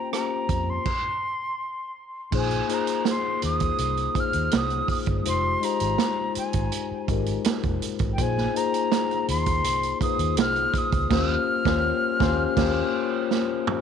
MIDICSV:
0, 0, Header, 1, 6, 480
1, 0, Start_track
1, 0, Tempo, 731707
1, 1523, Time_signature, 4, 2, 24, 8
1, 9060, End_track
2, 0, Start_track
2, 0, Title_t, "Flute"
2, 0, Program_c, 0, 73
2, 0, Note_on_c, 0, 82, 73
2, 84, Note_off_c, 0, 82, 0
2, 94, Note_on_c, 0, 82, 80
2, 458, Note_on_c, 0, 84, 87
2, 468, Note_off_c, 0, 82, 0
2, 1291, Note_off_c, 0, 84, 0
2, 1561, Note_on_c, 0, 80, 86
2, 1795, Note_on_c, 0, 82, 79
2, 1805, Note_off_c, 0, 80, 0
2, 2019, Note_off_c, 0, 82, 0
2, 2034, Note_on_c, 0, 84, 85
2, 2243, Note_off_c, 0, 84, 0
2, 2264, Note_on_c, 0, 87, 100
2, 2755, Note_on_c, 0, 89, 95
2, 2764, Note_off_c, 0, 87, 0
2, 2980, Note_off_c, 0, 89, 0
2, 2996, Note_on_c, 0, 87, 95
2, 3205, Note_off_c, 0, 87, 0
2, 3219, Note_on_c, 0, 87, 76
2, 3271, Note_off_c, 0, 87, 0
2, 3464, Note_on_c, 0, 84, 94
2, 3702, Note_on_c, 0, 82, 96
2, 3712, Note_off_c, 0, 84, 0
2, 4174, Note_off_c, 0, 82, 0
2, 4186, Note_on_c, 0, 80, 67
2, 4630, Note_off_c, 0, 80, 0
2, 5333, Note_on_c, 0, 79, 68
2, 5387, Note_on_c, 0, 80, 95
2, 5397, Note_off_c, 0, 79, 0
2, 5622, Note_on_c, 0, 82, 90
2, 5632, Note_off_c, 0, 80, 0
2, 6094, Note_off_c, 0, 82, 0
2, 6100, Note_on_c, 0, 84, 95
2, 6547, Note_off_c, 0, 84, 0
2, 6576, Note_on_c, 0, 87, 89
2, 6795, Note_off_c, 0, 87, 0
2, 6823, Note_on_c, 0, 89, 104
2, 7071, Note_on_c, 0, 87, 90
2, 7081, Note_off_c, 0, 89, 0
2, 7308, Note_on_c, 0, 89, 106
2, 7318, Note_off_c, 0, 87, 0
2, 8736, Note_off_c, 0, 89, 0
2, 9060, End_track
3, 0, Start_track
3, 0, Title_t, "Tine electric piano"
3, 0, Program_c, 1, 4
3, 0, Control_c, 1, 64, 127
3, 0, Note_on_c, 1, 58, 65
3, 0, Note_on_c, 1, 61, 60
3, 0, Note_on_c, 1, 65, 60
3, 0, Note_on_c, 1, 67, 60
3, 0, Note_on_c, 1, 72, 80
3, 78, Note_off_c, 1, 58, 0
3, 78, Note_on_c, 1, 58, 58
3, 79, Note_off_c, 1, 61, 0
3, 79, Note_on_c, 1, 61, 56
3, 87, Note_off_c, 1, 65, 0
3, 87, Note_on_c, 1, 65, 55
3, 94, Note_off_c, 1, 67, 0
3, 94, Note_on_c, 1, 67, 60
3, 100, Note_off_c, 1, 72, 0
3, 100, Note_on_c, 1, 72, 61
3, 561, Note_off_c, 1, 58, 0
3, 561, Note_off_c, 1, 61, 0
3, 565, Note_off_c, 1, 65, 0
3, 568, Note_off_c, 1, 67, 0
3, 571, Note_off_c, 1, 72, 0
3, 571, Control_c, 1, 64, 0
3, 1518, Note_on_c, 1, 58, 72
3, 1524, Note_on_c, 1, 63, 63
3, 1530, Note_on_c, 1, 65, 62
3, 1532, Note_on_c, 1, 68, 64
3, 1541, Note_on_c, 1, 72, 74
3, 1661, Control_c, 1, 64, 127
3, 1671, Note_off_c, 1, 58, 0
3, 1675, Note_off_c, 1, 63, 0
3, 1677, Note_off_c, 1, 65, 0
3, 1679, Note_off_c, 1, 68, 0
3, 1683, Note_off_c, 1, 72, 0
3, 1759, Note_on_c, 1, 58, 78
3, 1764, Note_on_c, 1, 63, 69
3, 1769, Note_on_c, 1, 65, 60
3, 1771, Note_on_c, 1, 68, 70
3, 1779, Note_on_c, 1, 72, 78
3, 2365, Note_off_c, 1, 58, 0
3, 2368, Note_off_c, 1, 63, 0
3, 2370, Note_off_c, 1, 65, 0
3, 2371, Note_off_c, 1, 68, 0
3, 2375, Note_off_c, 1, 72, 0
3, 2716, Note_on_c, 1, 58, 58
3, 2724, Note_on_c, 1, 63, 56
3, 2724, Note_on_c, 1, 65, 58
3, 2733, Note_on_c, 1, 68, 51
3, 2735, Note_on_c, 1, 72, 71
3, 3173, Note_off_c, 1, 58, 0
3, 3177, Note_off_c, 1, 63, 0
3, 3177, Note_off_c, 1, 65, 0
3, 3182, Note_off_c, 1, 68, 0
3, 3182, Note_off_c, 1, 72, 0
3, 3431, Note_on_c, 1, 56, 70
3, 3437, Note_on_c, 1, 63, 60
3, 3444, Note_on_c, 1, 65, 65
3, 3447, Note_on_c, 1, 67, 63
3, 3454, Control_c, 1, 64, 0
3, 3455, Note_on_c, 1, 72, 76
3, 3564, Control_c, 1, 64, 127
3, 3589, Note_off_c, 1, 56, 0
3, 3592, Note_off_c, 1, 63, 0
3, 3595, Note_off_c, 1, 65, 0
3, 3597, Note_off_c, 1, 67, 0
3, 3601, Note_off_c, 1, 72, 0
3, 3676, Note_on_c, 1, 56, 75
3, 3684, Note_on_c, 1, 63, 68
3, 3692, Note_on_c, 1, 65, 65
3, 3693, Note_on_c, 1, 67, 66
3, 3702, Note_on_c, 1, 72, 80
3, 4284, Note_off_c, 1, 56, 0
3, 4288, Note_off_c, 1, 63, 0
3, 4292, Note_off_c, 1, 65, 0
3, 4292, Note_off_c, 1, 67, 0
3, 4297, Note_off_c, 1, 72, 0
3, 4646, Note_on_c, 1, 56, 66
3, 4650, Note_on_c, 1, 63, 52
3, 4656, Note_on_c, 1, 65, 56
3, 4662, Note_on_c, 1, 67, 56
3, 4666, Note_on_c, 1, 70, 67
3, 5098, Note_off_c, 1, 56, 0
3, 5100, Note_off_c, 1, 63, 0
3, 5104, Note_off_c, 1, 65, 0
3, 5107, Note_off_c, 1, 67, 0
3, 5109, Note_off_c, 1, 70, 0
3, 5370, Note_on_c, 1, 58, 74
3, 5376, Control_c, 1, 64, 0
3, 5376, Note_on_c, 1, 63, 63
3, 5377, Note_on_c, 1, 65, 67
3, 5385, Note_on_c, 1, 68, 66
3, 5386, Note_on_c, 1, 72, 88
3, 5472, Control_c, 1, 64, 127
3, 5519, Note_off_c, 1, 58, 0
3, 5522, Note_off_c, 1, 63, 0
3, 5522, Note_off_c, 1, 65, 0
3, 5526, Note_off_c, 1, 68, 0
3, 5527, Note_off_c, 1, 72, 0
3, 5602, Note_on_c, 1, 58, 74
3, 5604, Note_on_c, 1, 63, 71
3, 5613, Note_on_c, 1, 65, 69
3, 5616, Note_on_c, 1, 68, 67
3, 5624, Note_on_c, 1, 72, 88
3, 6207, Note_off_c, 1, 58, 0
3, 6209, Note_off_c, 1, 63, 0
3, 6213, Note_off_c, 1, 65, 0
3, 6215, Note_off_c, 1, 68, 0
3, 6218, Note_off_c, 1, 72, 0
3, 6565, Note_on_c, 1, 58, 65
3, 6567, Note_on_c, 1, 63, 54
3, 6574, Note_on_c, 1, 65, 55
3, 6577, Note_on_c, 1, 68, 55
3, 6586, Note_on_c, 1, 71, 57
3, 6619, Note_off_c, 1, 71, 0
3, 6627, Note_on_c, 1, 72, 62
3, 7018, Note_off_c, 1, 58, 0
3, 7019, Note_off_c, 1, 63, 0
3, 7023, Note_off_c, 1, 65, 0
3, 7024, Note_off_c, 1, 68, 0
3, 7049, Note_off_c, 1, 72, 0
3, 7280, Note_on_c, 1, 58, 95
3, 7280, Note_on_c, 1, 61, 96
3, 7289, Note_on_c, 1, 65, 100
3, 7294, Control_c, 1, 64, 0
3, 7294, Note_on_c, 1, 67, 94
3, 7299, Note_on_c, 1, 72, 94
3, 7415, Control_c, 1, 64, 127
3, 7445, Note_off_c, 1, 58, 0
3, 7446, Note_off_c, 1, 61, 0
3, 7451, Note_off_c, 1, 65, 0
3, 7454, Note_off_c, 1, 67, 0
3, 7457, Note_off_c, 1, 72, 0
3, 7650, Note_on_c, 1, 58, 97
3, 7653, Note_on_c, 1, 61, 95
3, 7661, Note_on_c, 1, 65, 96
3, 7669, Note_on_c, 1, 72, 101
3, 7705, Note_on_c, 1, 67, 93
3, 7811, Note_off_c, 1, 58, 0
3, 7813, Note_off_c, 1, 61, 0
3, 7818, Note_off_c, 1, 65, 0
3, 7823, Note_off_c, 1, 72, 0
3, 7843, Note_off_c, 1, 67, 0
3, 7998, Note_on_c, 1, 58, 93
3, 8001, Note_on_c, 1, 61, 109
3, 8006, Note_on_c, 1, 65, 108
3, 8021, Note_on_c, 1, 72, 111
3, 8056, Note_on_c, 1, 67, 97
3, 8164, Note_off_c, 1, 58, 0
3, 8166, Note_off_c, 1, 61, 0
3, 8169, Note_off_c, 1, 65, 0
3, 8177, Note_off_c, 1, 72, 0
3, 8198, Note_off_c, 1, 67, 0
3, 8241, Note_on_c, 1, 58, 90
3, 8241, Note_on_c, 1, 61, 94
3, 8247, Note_on_c, 1, 65, 104
3, 8256, Note_on_c, 1, 67, 102
3, 8261, Note_on_c, 1, 72, 99
3, 8406, Note_off_c, 1, 58, 0
3, 8406, Note_off_c, 1, 61, 0
3, 8410, Note_off_c, 1, 65, 0
3, 8415, Note_off_c, 1, 67, 0
3, 8418, Note_off_c, 1, 72, 0
3, 9060, End_track
4, 0, Start_track
4, 0, Title_t, "Fingered electric bass"
4, 0, Program_c, 2, 33
4, 322, Note_on_c, 2, 41, 84
4, 505, Note_off_c, 2, 41, 0
4, 1526, Note_on_c, 2, 34, 86
4, 1708, Note_off_c, 2, 34, 0
4, 2253, Note_on_c, 2, 39, 75
4, 2432, Note_off_c, 2, 39, 0
4, 2488, Note_on_c, 2, 36, 75
4, 2669, Note_off_c, 2, 36, 0
4, 2849, Note_on_c, 2, 39, 86
4, 2938, Note_off_c, 2, 39, 0
4, 2972, Note_on_c, 2, 36, 80
4, 3152, Note_off_c, 2, 36, 0
4, 3325, Note_on_c, 2, 31, 81
4, 3417, Note_off_c, 2, 31, 0
4, 3456, Note_on_c, 2, 29, 89
4, 3635, Note_off_c, 2, 29, 0
4, 3812, Note_on_c, 2, 32, 81
4, 3900, Note_off_c, 2, 32, 0
4, 4291, Note_on_c, 2, 32, 81
4, 4380, Note_off_c, 2, 32, 0
4, 4648, Note_on_c, 2, 32, 88
4, 4830, Note_off_c, 2, 32, 0
4, 5013, Note_on_c, 2, 29, 68
4, 5102, Note_off_c, 2, 29, 0
4, 5247, Note_on_c, 2, 32, 82
4, 5338, Note_off_c, 2, 32, 0
4, 5369, Note_on_c, 2, 34, 98
4, 5551, Note_off_c, 2, 34, 0
4, 6092, Note_on_c, 2, 39, 76
4, 6326, Note_off_c, 2, 39, 0
4, 6326, Note_on_c, 2, 36, 91
4, 6509, Note_off_c, 2, 36, 0
4, 6686, Note_on_c, 2, 39, 86
4, 6805, Note_off_c, 2, 39, 0
4, 6805, Note_on_c, 2, 36, 96
4, 6988, Note_off_c, 2, 36, 0
4, 7166, Note_on_c, 2, 37, 89
4, 7258, Note_off_c, 2, 37, 0
4, 7286, Note_on_c, 2, 39, 90
4, 7449, Note_off_c, 2, 39, 0
4, 7644, Note_on_c, 2, 39, 98
4, 7808, Note_off_c, 2, 39, 0
4, 8006, Note_on_c, 2, 39, 94
4, 8169, Note_off_c, 2, 39, 0
4, 8245, Note_on_c, 2, 39, 79
4, 8408, Note_off_c, 2, 39, 0
4, 9060, End_track
5, 0, Start_track
5, 0, Title_t, "Muted fingered electric bass strokes"
5, 4175, Note_on_c, 9, 29, 44
5, 4240, Note_off_c, 9, 29, 0
5, 4534, Note_on_c, 9, 29, 40
5, 4600, Note_off_c, 9, 29, 0
5, 4892, Note_on_c, 9, 29, 41
5, 4957, Note_off_c, 9, 29, 0
5, 9060, End_track
6, 0, Start_track
6, 0, Title_t, "Drums"
6, 85, Note_on_c, 9, 37, 88
6, 91, Note_on_c, 9, 42, 79
6, 151, Note_off_c, 9, 37, 0
6, 157, Note_off_c, 9, 42, 0
6, 322, Note_on_c, 9, 36, 81
6, 322, Note_on_c, 9, 42, 62
6, 387, Note_off_c, 9, 42, 0
6, 388, Note_off_c, 9, 36, 0
6, 561, Note_on_c, 9, 49, 68
6, 563, Note_on_c, 9, 36, 89
6, 627, Note_off_c, 9, 49, 0
6, 628, Note_off_c, 9, 36, 0
6, 1523, Note_on_c, 9, 49, 88
6, 1524, Note_on_c, 9, 36, 90
6, 1589, Note_off_c, 9, 49, 0
6, 1590, Note_off_c, 9, 36, 0
6, 1643, Note_on_c, 9, 42, 33
6, 1708, Note_off_c, 9, 42, 0
6, 1767, Note_on_c, 9, 42, 54
6, 1833, Note_off_c, 9, 42, 0
6, 1883, Note_on_c, 9, 42, 49
6, 1948, Note_off_c, 9, 42, 0
6, 2002, Note_on_c, 9, 38, 87
6, 2008, Note_on_c, 9, 42, 87
6, 2068, Note_off_c, 9, 38, 0
6, 2073, Note_off_c, 9, 42, 0
6, 2243, Note_on_c, 9, 42, 70
6, 2308, Note_off_c, 9, 42, 0
6, 2361, Note_on_c, 9, 42, 51
6, 2367, Note_on_c, 9, 36, 79
6, 2426, Note_off_c, 9, 42, 0
6, 2433, Note_off_c, 9, 36, 0
6, 2482, Note_on_c, 9, 42, 66
6, 2548, Note_off_c, 9, 42, 0
6, 2605, Note_on_c, 9, 42, 32
6, 2671, Note_off_c, 9, 42, 0
6, 2723, Note_on_c, 9, 36, 86
6, 2725, Note_on_c, 9, 42, 53
6, 2789, Note_off_c, 9, 36, 0
6, 2791, Note_off_c, 9, 42, 0
6, 2840, Note_on_c, 9, 42, 51
6, 2906, Note_off_c, 9, 42, 0
6, 2960, Note_on_c, 9, 42, 101
6, 2971, Note_on_c, 9, 38, 119
6, 3026, Note_off_c, 9, 42, 0
6, 3037, Note_off_c, 9, 38, 0
6, 3083, Note_on_c, 9, 42, 32
6, 3149, Note_off_c, 9, 42, 0
6, 3203, Note_on_c, 9, 36, 85
6, 3208, Note_on_c, 9, 46, 54
6, 3268, Note_off_c, 9, 36, 0
6, 3274, Note_off_c, 9, 46, 0
6, 3319, Note_on_c, 9, 42, 48
6, 3327, Note_on_c, 9, 36, 92
6, 3384, Note_off_c, 9, 42, 0
6, 3392, Note_off_c, 9, 36, 0
6, 3445, Note_on_c, 9, 42, 87
6, 3511, Note_off_c, 9, 42, 0
6, 3691, Note_on_c, 9, 42, 60
6, 3756, Note_off_c, 9, 42, 0
6, 3803, Note_on_c, 9, 42, 53
6, 3869, Note_off_c, 9, 42, 0
6, 3925, Note_on_c, 9, 38, 90
6, 3931, Note_on_c, 9, 42, 84
6, 3991, Note_off_c, 9, 38, 0
6, 3996, Note_off_c, 9, 42, 0
6, 4166, Note_on_c, 9, 42, 60
6, 4232, Note_off_c, 9, 42, 0
6, 4283, Note_on_c, 9, 42, 57
6, 4290, Note_on_c, 9, 36, 73
6, 4349, Note_off_c, 9, 42, 0
6, 4356, Note_off_c, 9, 36, 0
6, 4406, Note_on_c, 9, 42, 70
6, 4472, Note_off_c, 9, 42, 0
6, 4646, Note_on_c, 9, 36, 82
6, 4647, Note_on_c, 9, 42, 58
6, 4712, Note_off_c, 9, 36, 0
6, 4713, Note_off_c, 9, 42, 0
6, 4765, Note_on_c, 9, 42, 52
6, 4830, Note_off_c, 9, 42, 0
6, 4883, Note_on_c, 9, 42, 106
6, 4894, Note_on_c, 9, 38, 115
6, 4949, Note_off_c, 9, 42, 0
6, 4960, Note_off_c, 9, 38, 0
6, 5007, Note_on_c, 9, 42, 30
6, 5010, Note_on_c, 9, 36, 99
6, 5073, Note_off_c, 9, 42, 0
6, 5076, Note_off_c, 9, 36, 0
6, 5130, Note_on_c, 9, 42, 65
6, 5195, Note_off_c, 9, 42, 0
6, 5240, Note_on_c, 9, 42, 44
6, 5248, Note_on_c, 9, 36, 92
6, 5306, Note_off_c, 9, 42, 0
6, 5314, Note_off_c, 9, 36, 0
6, 5367, Note_on_c, 9, 42, 83
6, 5368, Note_on_c, 9, 36, 95
6, 5432, Note_off_c, 9, 42, 0
6, 5433, Note_off_c, 9, 36, 0
6, 5496, Note_on_c, 9, 38, 37
6, 5562, Note_off_c, 9, 38, 0
6, 5616, Note_on_c, 9, 42, 62
6, 5681, Note_off_c, 9, 42, 0
6, 5732, Note_on_c, 9, 42, 48
6, 5797, Note_off_c, 9, 42, 0
6, 5849, Note_on_c, 9, 38, 93
6, 5855, Note_on_c, 9, 42, 90
6, 5915, Note_off_c, 9, 38, 0
6, 5921, Note_off_c, 9, 42, 0
6, 5976, Note_on_c, 9, 42, 30
6, 6042, Note_off_c, 9, 42, 0
6, 6090, Note_on_c, 9, 42, 71
6, 6156, Note_off_c, 9, 42, 0
6, 6206, Note_on_c, 9, 42, 53
6, 6210, Note_on_c, 9, 36, 76
6, 6272, Note_off_c, 9, 42, 0
6, 6276, Note_off_c, 9, 36, 0
6, 6325, Note_on_c, 9, 42, 74
6, 6391, Note_off_c, 9, 42, 0
6, 6449, Note_on_c, 9, 42, 34
6, 6515, Note_off_c, 9, 42, 0
6, 6565, Note_on_c, 9, 36, 85
6, 6569, Note_on_c, 9, 42, 63
6, 6631, Note_off_c, 9, 36, 0
6, 6635, Note_off_c, 9, 42, 0
6, 6685, Note_on_c, 9, 42, 54
6, 6750, Note_off_c, 9, 42, 0
6, 6802, Note_on_c, 9, 42, 108
6, 6813, Note_on_c, 9, 38, 104
6, 6867, Note_off_c, 9, 42, 0
6, 6878, Note_off_c, 9, 38, 0
6, 6927, Note_on_c, 9, 42, 31
6, 6992, Note_off_c, 9, 42, 0
6, 7043, Note_on_c, 9, 36, 84
6, 7050, Note_on_c, 9, 42, 73
6, 7109, Note_off_c, 9, 36, 0
6, 7115, Note_off_c, 9, 42, 0
6, 7164, Note_on_c, 9, 42, 51
6, 7167, Note_on_c, 9, 36, 93
6, 7230, Note_off_c, 9, 42, 0
6, 7233, Note_off_c, 9, 36, 0
6, 7285, Note_on_c, 9, 36, 113
6, 7286, Note_on_c, 9, 49, 82
6, 7290, Note_on_c, 9, 38, 107
6, 7351, Note_off_c, 9, 36, 0
6, 7352, Note_off_c, 9, 49, 0
6, 7356, Note_off_c, 9, 38, 0
6, 7645, Note_on_c, 9, 36, 99
6, 7649, Note_on_c, 9, 38, 105
6, 7711, Note_off_c, 9, 36, 0
6, 7715, Note_off_c, 9, 38, 0
6, 8005, Note_on_c, 9, 36, 106
6, 8010, Note_on_c, 9, 38, 98
6, 8071, Note_off_c, 9, 36, 0
6, 8076, Note_off_c, 9, 38, 0
6, 8245, Note_on_c, 9, 36, 95
6, 8246, Note_on_c, 9, 49, 76
6, 8249, Note_on_c, 9, 38, 93
6, 8310, Note_off_c, 9, 36, 0
6, 8311, Note_off_c, 9, 49, 0
6, 8315, Note_off_c, 9, 38, 0
6, 8731, Note_on_c, 9, 38, 59
6, 8796, Note_off_c, 9, 38, 0
6, 8970, Note_on_c, 9, 45, 99
6, 9036, Note_off_c, 9, 45, 0
6, 9060, End_track
0, 0, End_of_file